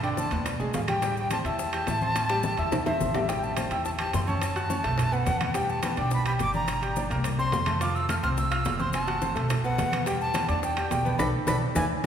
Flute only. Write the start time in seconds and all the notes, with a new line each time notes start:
0.04 G5
0.18 A5
0.75 F5
0.89 G5
1.18 G5
1.32 A5
1.47 A5
2.86 E5
3.29 G5
3.44 A5
3.57 A5
3.71 G5
3.85 A5
4.00 A5
4.15 C6
4.28 A5
5.13 F#5
5.56 G5
5.70 A5
5.84 A5
5.98 G5
6.13 B5
6.27 B5
6.41 D6
6.55 A#5
7.39 C6
7.81 D6
7.95 E6
8.09 F6
8.24 F6
8.38 E6
8.81 C6
8.94 A5
9.65 F#5
10.07 G5
10.21 A5
10.49 A5
10.64 G5
10.91 G5
11.18 B5
11.48 B5
11.76 G#5